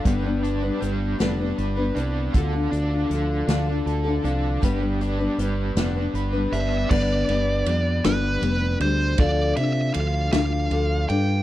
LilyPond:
<<
  \new Staff \with { instrumentName = "Lead electric guitar" } { \time 6/8 \key g \mixolydian \tempo 4. = 53 r2. | r2. | r2 r8 e''8 | d''4. b'4 c''8 |
d''8 e''8 f''8 f''4 g''8 | }
  \new Staff \with { instrumentName = "Overdriven electric guitar" } { \time 6/8 \key g \mixolydian g8 d'8 g8 d'8 b'8 d'8 | d8 d'8 d8 d'8 a'8 d'8 | g8 d'8 g8 d'8 b'8 d'8 | r2. |
r2. | }
  \new Staff \with { instrumentName = "Steel-string acoustic guitar" } { \time 6/8 \key g \mixolydian <g, d g b d' b'>16 <g b d' b'>8 <g b d' b'>16 <g b d' b'>8 <g, d g b d' b'>16 <g b d' b'>8 <g b d' b'>16 <g b d' b'>8 | <d f d' f' a'>16 <d' f' a'>8 <d' f' a'>16 <f d' f' a'>8 <d f d' f' a'>16 <d' f' a'>8 <d' f' a'>16 <f d' f' a'>8 | <g, d g b d' b'>16 <g b d' b'>8 <g b d' b'>16 <g b d' b'>8 <g, d g b d' b'>16 <g b d' b'>8 <g b d' b'>16 <g b d' b'>8 | <g, d g b d' b'>8 <g b d' b'>8 <g b d' b'>8 <g, d g b d' b'>8 <g b d' b'>8 <g d'>8 |
<d f d' f' a'>8 <d' f' a'>8 <f d' f' a'>8 <d f d' f' a'>8 <f d' f' a'>8 <d' f' a'>8 | }
  \new Staff \with { instrumentName = "Fingered electric bass" } { \clef bass \time 6/8 \key g \mixolydian g,,4 g,,8 f,,8 g,,8 c,8 | d,8 d,8 d,8 d,8 d,8 c,8 | g,,4 g,,8 f,,8 g,,8 g,,8 | g,,8 g,,8 f,8 g,,8 f,,8 d,8 |
d,8 c8 d,8 d,8 d,8 g,8 | }
  \new DrumStaff \with { instrumentName = "Drums" } \drummode { \time 6/8 <hh bd>8 hh8 hh8 <hh sn>8 hh8 hh8 | <hh bd>8 hh8 hh8 <hh sn>8 hh8 hh8 | <hh bd>8 hh8 hh8 <hh sn>8 hh8 hh8 | <cymc bd>8 cymr8 cymr8 <cymr sn>8 cymr8 cymr8 |
<bd cymr>8 cymr8 cymr8 <cymr sn>8 cymr8 cymr8 | }
>>